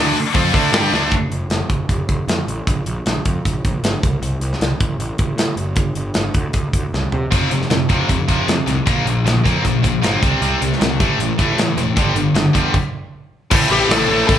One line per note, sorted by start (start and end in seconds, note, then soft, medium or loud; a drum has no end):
0.00 0.13 D2 medium
0.00 0.15 D3 medium
0.00 0.15 A3 loud
0.00 0.16 D4 loud
0.16 open hi-hat medium
0.34 0.53 F2 medium
0.34 0.53 F3 medium
0.34 0.54 C4 loud
0.34 0.54 F4 loud
0.34 kick medium
0.34 open hi-hat medium
0.53 0.72 D2 loud
0.53 0.72 D3 medium
0.53 0.72 A3 medium
0.53 0.72 D4 medium
0.53 kick loud
0.53 open hi-hat medium
0.72 0.91 G2 medium
0.72 0.92 G3 medium
0.72 0.92 D4 loud
0.72 0.92 G4 loud
0.72 snare loud
0.72 open hi-hat medium
0.92 1.10 D2 medium
0.92 1.11 D3 medium
0.92 1.11 A3 medium
0.92 1.12 D4 medium
0.92 snare medium
1.11 1.24 F1 medium
1.11 kick loud
1.11 closed hi-hat medium
1.31 1.43 F1 medium
1.31 closed hi-hat soft
1.50 1.62 F1 medium
1.50 snare medium
1.50 closed hi-hat medium
1.70 1.82 F1 medium
1.70 kick medium
1.70 closed hi-hat soft
1.89 2.01 F1 medium
1.89 kick medium
1.89 closed hi-hat medium
2.09 2.21 F1 medium
2.09 kick medium
2.09 closed hi-hat medium
2.27 2.40 F2 medium
2.27 snare loud
2.27 closed hi-hat medium
2.47 2.59 A1 medium
2.47 closed hi-hat medium
2.67 2.79 A#1 medium
2.67 kick medium
2.67 closed hi-hat medium
2.86 2.99 A#1 medium
2.86 closed hi-hat medium
3.06 3.18 A#1 medium
3.06 snare medium
3.06 closed hi-hat medium
3.25 3.37 F2 medium
3.25 kick medium
3.25 closed hi-hat medium
3.45 3.57 A#1 medium
3.45 kick medium
3.45 closed hi-hat medium
3.65 3.76 A#1 medium
3.65 kick medium
3.65 closed hi-hat medium
3.83 3.95 G1 medium
3.83 snare medium
3.83 closed hi-hat medium
4.03 4.15 C2 medium
4.03 kick medium
4.03 closed hi-hat medium
4.21 4.34 C2 medium
4.21 closed hi-hat medium
4.41 4.53 C2 medium
4.41 closed hi-hat medium
4.53 snare soft
4.60 4.72 C2 medium
4.60 snare medium
4.60 closed hi-hat medium
4.80 4.92 A1 medium
4.80 kick medium
4.80 closed hi-hat soft
4.99 5.11 A1 medium
4.99 closed hi-hat medium
5.18 5.31 A1 medium
5.18 kick medium
5.18 closed hi-hat medium
5.36 5.49 A2 medium
5.36 snare loud
5.36 closed hi-hat medium
5.56 5.76 F#1 medium
5.56 closed hi-hat medium
5.76 5.89 G1 medium
5.76 kick loud
5.76 closed hi-hat medium
5.95 6.08 G1 medium
5.95 closed hi-hat medium
6.14 6.28 G1 medium
6.14 snare medium
6.14 closed hi-hat medium
6.34 6.47 D2 medium
6.34 kick medium
6.34 closed hi-hat medium
6.53 6.66 D2 medium
6.53 kick medium
6.53 closed hi-hat medium
6.73 6.85 D2 medium
6.73 kick medium
6.73 closed hi-hat medium
6.93 7.05 C2 medium
6.93 snare soft
7.12 7.25 C3 medium
7.12 floor tom medium
7.31 7.44 F1 medium
7.31 7.50 F2 medium
7.31 7.50 C3 medium
7.31 7.50 F3 medium
7.31 kick loud
7.31 closed hi-hat medium
7.31 splash medium
7.51 7.64 F1 medium
7.51 7.69 F2 medium
7.51 7.69 C3 medium
7.51 closed hi-hat medium
7.62 snare soft
7.70 7.83 F1 medium
7.70 7.88 F2 medium
7.70 7.88 C3 medium
7.70 snare medium
7.70 closed hi-hat medium
7.89 8.02 F1 medium
7.89 8.08 F2 medium
7.89 8.08 C3 medium
7.89 8.09 F3 medium
7.89 kick medium
7.89 closed hi-hat soft
8.09 8.21 F1 medium
8.09 8.27 F2 medium
8.09 8.27 C3 medium
8.09 kick medium
8.09 closed hi-hat medium
8.28 8.40 F1 medium
8.28 8.46 F2 medium
8.28 8.47 C3 medium
8.28 8.47 F3 medium
8.28 kick medium
8.28 closed hi-hat medium
8.47 8.65 F2 medium
8.47 8.60 F2 medium
8.47 8.65 C3 medium
8.47 snare medium
8.47 closed hi-hat medium
8.66 8.79 C2 medium
8.66 8.84 F2 medium
8.66 8.85 C3 medium
8.66 closed hi-hat medium
8.86 8.99 A#1 medium
8.86 9.05 A#2 medium
8.86 9.05 F3 medium
8.86 9.05 A#3 medium
8.86 kick medium
8.86 closed hi-hat medium
9.06 9.18 A#1 medium
9.06 9.24 A#2 medium
9.06 9.24 F3 medium
9.06 closed hi-hat medium
9.24 9.37 A#1 medium
9.24 9.43 A#2 medium
9.24 9.43 F3 medium
9.24 snare loud
9.24 closed hi-hat medium
9.45 9.57 F2 medium
9.45 9.63 A#2 medium
9.45 9.63 F3 medium
9.45 9.63 A#3 medium
9.45 kick medium
9.45 closed hi-hat medium
9.64 9.77 A#1 medium
9.64 9.82 A#2 medium
9.64 9.82 F3 medium
9.64 kick medium
9.64 closed hi-hat medium
9.84 9.96 A#1 medium
9.84 10.01 A#2 medium
9.84 10.01 F3 medium
9.84 kick medium
9.84 closed hi-hat medium
10.03 10.15 G1 medium
10.03 10.21 A#2 medium
10.03 10.22 F3 medium
10.03 10.22 A#3 medium
10.03 snare medium
10.03 closed hi-hat medium
10.22 10.34 C2 medium
10.22 10.40 C3 medium
10.22 10.41 G3 medium
10.22 10.41 C4 medium
10.22 kick medium
10.22 closed hi-hat medium
10.41 10.54 C2 medium
10.41 10.60 C3 medium
10.41 10.60 G3 medium
10.41 10.61 C4 medium
10.41 closed hi-hat medium
10.61 10.73 C2 medium
10.61 10.79 C3 medium
10.61 10.79 G3 medium
10.61 closed hi-hat medium
10.73 snare soft
10.80 11.01 C2 medium
10.80 10.98 C3 medium
10.80 10.98 G3 medium
10.80 snare loud
10.80 closed hi-hat medium
11.00 11.12 A1 medium
11.00 11.17 A2 medium
11.00 11.18 E3 medium
11.00 11.19 A3 medium
11.00 kick medium
11.00 closed hi-hat medium
11.18 11.31 A1 medium
11.18 11.36 A2 medium
11.18 11.37 E3 medium
11.18 closed hi-hat medium
11.39 11.51 A1 medium
11.39 11.57 A2 medium
11.39 11.57 E3 medium
11.39 11.58 A3 medium
11.39 kick medium
11.39 closed hi-hat medium
11.57 11.69 A2 medium
11.57 11.76 A2 medium
11.57 11.76 E3 medium
11.57 snare loud
11.57 closed hi-hat medium
11.76 11.89 E1 medium
11.76 11.95 A2 medium
11.76 11.95 E3 medium
11.76 closed hi-hat medium
11.96 12.09 G1 medium
11.96 12.15 G2 medium
11.96 12.15 D3 medium
11.96 12.15 G3 medium
11.96 kick loud
11.96 closed hi-hat medium
12.14 12.27 G1 medium
12.14 12.33 G2 medium
12.14 12.34 D3 medium
12.14 closed hi-hat medium
12.34 12.46 G1 medium
12.34 12.52 G2 medium
12.34 12.53 D3 medium
12.34 snare loud
12.34 closed hi-hat medium
12.53 12.67 E2 medium
12.53 12.72 G2 medium
12.53 12.73 D3 medium
12.53 12.73 G3 medium
12.53 kick medium
12.53 closed hi-hat medium
12.74 kick medium
12.74 crash medium
13.51 13.65 A1 medium
13.51 13.69 A2 medium
13.51 13.70 E3 medium
13.51 13.71 A3 loud
13.51 13.70 C4 medium
13.51 13.71 E4 loud
13.51 kick loud
13.51 crash loud
13.70 13.83 A1 medium
13.70 13.89 A2 medium
13.70 13.89 E3 medium
13.70 13.91 A3 medium
13.70 13.90 C4 medium
13.70 13.91 E4 loud
13.70 13.91 G4 loud
13.89 14.03 A1 medium
13.89 14.08 A2 medium
13.89 14.08 E3 medium
13.89 14.09 A3 medium
13.89 14.09 C4 loud
13.89 14.10 E4 medium
13.89 14.27 A4 loud
13.89 snare loud
13.89 open hi-hat medium
14.09 14.22 A1 medium
14.09 14.27 A2 loud
14.09 14.28 E3 loud
14.09 14.29 A3 loud
14.09 14.29 C4 loud
14.09 14.29 E4 loud
14.28 14.39 A1 medium
14.28 14.39 A2 medium
14.28 14.39 E3 loud
14.28 14.39 A3 loud
14.28 14.39 C4 medium
14.28 14.39 E4 medium
14.28 14.39 A4 loud
14.28 kick loud
14.28 open hi-hat medium